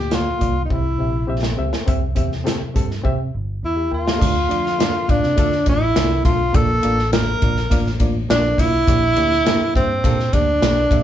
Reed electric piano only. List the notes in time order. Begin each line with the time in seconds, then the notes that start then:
Already playing: A#2
0.10 A#3 F4 D5
0.39 A#3 F4 D5
0.69 C3 C4 G4 E5
0.98 C4 G4 E5
1.27 C4 G4 E5
1.57 C4 G4 E5
1.86 C3 C4 G4 E5
2.15 C4 G4 E5
2.44 C4 G4 A4
2.74 C4 G4 A4
3.03 C4 G4 E5
3.76 G4 E5
3.91 A#4 G5
4.06 G4 E5
4.19 D3 A3 D4 F4 D5
4.48 A3 D4 F4 D5
4.78 A3 D4 F4 D5
5.08 A3 D4 F4 F5
5.36 A3 D4 F4 A4
5.66 A3 D4 F4 D5
5.95 A3 D4 F4 D5
6.24 A3 D4 F4 A4
6.53 A#3 D4 F4 D5
6.83 A#3 D4 F4 D5
7.12 A#3 D4 F4 D5
7.42 A#3 D4 F4 D5
7.70 A#3 D4 F4 D5
8.00 A#3 D4 F4 D5
8.29 A#3 D4 F4 D5
8.58 A#3 D4 F4 D5
8.87 A#2 A#3 D4 G4 D5
9.16 A#3 D4 G4 D5
9.45 A#3 D4 G4 A#4
9.74 A#3 D4 G4 E5
10.04 A#3 D4 G4 A4
10.33 A#3 D4 G4 D5
10.60 A#3 D4 G4 A4
10.90 A#3 D4 G4 E5